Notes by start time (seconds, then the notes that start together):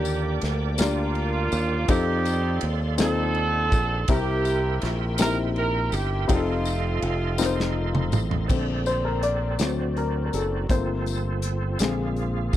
Already playing: D#2 D3 A#3 D4 G4 A#4 D5 G5 D6
0.05 ride, tambourine
0.41 D2, snare, ride
0.78 A#3 D4 F4 G4 A#4, snare, ride, tambourine
1.15 ride
1.52 D#2, ride, tambourine
1.88 F2 C4 D#4 F4 G4 A4 F5 C6, kick, ride, tambourine
2.25 ride, tambourine
2.61 D#2, ride
2.98 C4 D#4 F4 A4, snare, ride, tambourine
3.35 ride
3.72 A#1, kick, ride, tambourine
4.08 C2 C3 A#3 C4 E4 G4 A#4 E5 G5, kick, ride, tambourine
4.45 ride, tambourine
4.82 A#1, snare, ride
5.18 C4 D#4 G4 A#4, snare, ride, tambourine
5.25 E4
5.56 A#4, ride
5.92 G1 G4, ride, tambourine
6.28 F1 A3 C4 D#4 F4 G4 A4 D#5 F5, kick, ride, tambourine
6.35 A4
6.65 ride, tambourine
7.02 F1, ride
7.38 C4 D#4 F4 A#4, snare, tambourine
7.46 C5
7.60 snare
7.95 mid tom
8.12 A1, mid tom, tambourine
8.31 floor tom
8.48 A#1 D3 A3 C4 A4 C5 D5, kick, crash, tambourine
8.86 C5, closed hi-hat, tambourine
9.05 A#4
9.23 D5, closed hi-hat
9.59 D2 F#3 C4 F#4, snare, closed hi-hat, tambourine
9.97 A#4, closed hi-hat
10.26 A#4
10.33 F#1 A4, closed hi-hat, tambourine
10.69 G1 F3 A3 A#3 C4 F4 A4 C5, kick, closed hi-hat, tambourine
11.06 closed hi-hat, tambourine
11.42 closed hi-hat
11.79 A#1 D3 G#3 A#3 C4 G#4 F5, snare, closed hi-hat, tambourine
12.16 closed hi-hat
12.53 F1, kick, tambourine